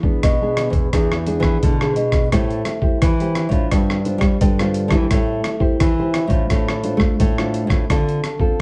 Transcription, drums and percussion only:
0.03 kick
0.23 kick, cross-stick, closed hi-hat
0.57 cross-stick, closed hi-hat
0.73 kick, closed hi-hat
0.93 kick, cross-stick, closed hi-hat
1.12 cross-stick
1.26 closed hi-hat
1.43 kick, cross-stick
1.63 kick, closed hi-hat
1.81 cross-stick
1.96 closed hi-hat
2.12 kick, cross-stick, closed hi-hat
2.32 kick, cross-stick, closed hi-hat
2.50 closed hi-hat
2.65 cross-stick, closed hi-hat
2.82 kick
3.02 kick, cross-stick, closed hi-hat
3.20 closed hi-hat
3.35 cross-stick, closed hi-hat
3.51 kick, closed hi-hat
3.71 kick, cross-stick, closed hi-hat
3.90 cross-stick
4.05 closed hi-hat
4.21 kick, cross-stick, closed hi-hat
4.41 kick, closed hi-hat
4.59 cross-stick, closed hi-hat
4.74 closed hi-hat
4.91 kick, cross-stick, closed hi-hat
5.11 kick, cross-stick, closed hi-hat
5.44 cross-stick, closed hi-hat
5.60 kick
5.80 kick, cross-stick, closed hi-hat
6.14 cross-stick, closed hi-hat
6.30 kick, closed hi-hat
6.50 kick, cross-stick, closed hi-hat
6.68 cross-stick
6.84 closed hi-hat
7.00 kick, cross-stick
7.20 kick, closed hi-hat
7.38 cross-stick
7.54 closed hi-hat
7.70 kick, cross-stick, closed hi-hat
7.90 kick, cross-stick, closed hi-hat
8.09 closed hi-hat
8.24 cross-stick, closed hi-hat
8.40 kick

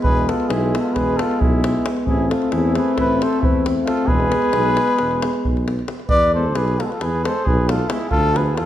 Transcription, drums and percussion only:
0.04 davul low
0.29 davul high
0.40 davul high
0.50 davul high
0.75 davul high
0.96 davul high, davul low
1.19 davul high
1.31 davul high
1.41 davul low
1.64 davul high
1.86 davul high
1.97 davul high
2.07 davul low
2.31 davul high
2.42 davul high
2.52 davul high
2.75 davul high
2.98 davul high, davul low
3.22 davul high
3.33 davul high
3.43 davul low
3.66 davul high
3.88 davul high
3.97 davul high
4.08 davul low
4.20 davul high
4.32 davul high
4.42 davul high
4.53 davul high
4.77 davul high
4.88 davul high
4.99 davul high
5.11 davul high
5.22 davul high
5.33 davul high
5.45 davul low
5.57 davul high
5.68 davul high
5.79 davul high
5.88 davul high
6.00 davul high
6.09 davul low
6.55 davul high
6.68 davul high
6.80 davul high
6.92 davul high
7.01 davul high
7.25 davul high
7.47 davul low
7.69 davul high
7.79 davul high
7.90 davul high
8.01 davul high
8.11 davul low
8.36 davul high
8.57 davul high

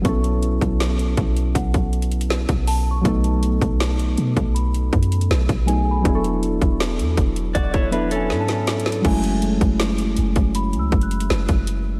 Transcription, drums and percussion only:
0.05 kick, closed hi-hat
0.24 closed hi-hat
0.43 closed hi-hat
0.61 kick, closed hi-hat
0.80 snare, closed hi-hat
0.99 closed hi-hat
1.17 kick, closed hi-hat
1.37 closed hi-hat
1.55 kick, closed hi-hat
1.74 kick, closed hi-hat
1.93 closed hi-hat
2.02 closed hi-hat
2.12 closed hi-hat
2.21 closed hi-hat
2.30 snare
2.49 kick, closed hi-hat
2.67 open hi-hat
3.05 kick, closed hi-hat
3.24 closed hi-hat
3.43 closed hi-hat
3.61 kick, closed hi-hat
3.80 snare, closed hi-hat
3.99 closed hi-hat
4.18 closed hi-hat
4.37 kick, closed hi-hat
4.56 closed hi-hat
4.74 closed hi-hat
4.93 kick, closed hi-hat
5.03 closed hi-hat
5.12 closed hi-hat
5.21 closed hi-hat
5.31 snare
5.49 kick, closed hi-hat
5.68 closed hi-hat
6.05 kick, closed hi-hat
6.24 closed hi-hat
6.43 closed hi-hat
6.62 kick, closed hi-hat
6.80 snare, closed hi-hat
6.99 closed hi-hat
7.17 kick, closed hi-hat
7.36 closed hi-hat
7.55 kick, closed hi-hat
7.74 kick, closed hi-hat
7.92 closed hi-hat
8.11 closed hi-hat
8.30 snare
8.48 snare, closed hi-hat
8.67 snare, closed hi-hat, open hi-hat
8.80 closed hi-hat
8.86 snare
8.92 closed hi-hat
9.05 kick, crash
9.24 closed hi-hat
9.42 closed hi-hat
9.61 kick, closed hi-hat
9.80 snare, closed hi-hat
9.98 closed hi-hat
10.17 closed hi-hat
10.36 kick, closed hi-hat
10.55 closed hi-hat
10.73 closed hi-hat
10.92 kick, closed hi-hat
11.01 closed hi-hat
11.11 closed hi-hat
11.20 closed hi-hat
11.30 snare
11.49 kick, closed hi-hat
11.67 closed hi-hat

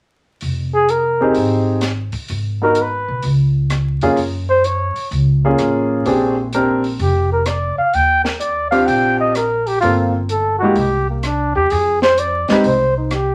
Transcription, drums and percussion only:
0.41 open hi-hat
0.89 closed hi-hat
1.34 open hi-hat
1.81 cross-stick, snare, closed hi-hat
2.12 kick, open hi-hat
2.28 open hi-hat
2.75 closed hi-hat
3.23 open hi-hat
3.70 cross-stick, closed hi-hat
4.01 open hi-hat
4.17 open hi-hat
4.64 closed hi-hat
4.96 open hi-hat
5.12 open hi-hat
5.58 cross-stick, closed hi-hat
6.06 open hi-hat
6.53 closed hi-hat
6.84 open hi-hat
6.99 open hi-hat
7.46 cross-stick, closed hi-hat
7.94 open hi-hat
8.25 snare
8.40 closed hi-hat
8.72 open hi-hat
8.88 open hi-hat
9.35 cross-stick, closed hi-hat
9.67 open hi-hat
9.82 open hi-hat
10.29 closed hi-hat
10.76 open hi-hat
11.23 cross-stick, closed hi-hat
11.70 open hi-hat
12.02 snare
12.18 closed hi-hat
12.48 snare, open hi-hat
12.64 open hi-hat
13.11 cross-stick, closed hi-hat

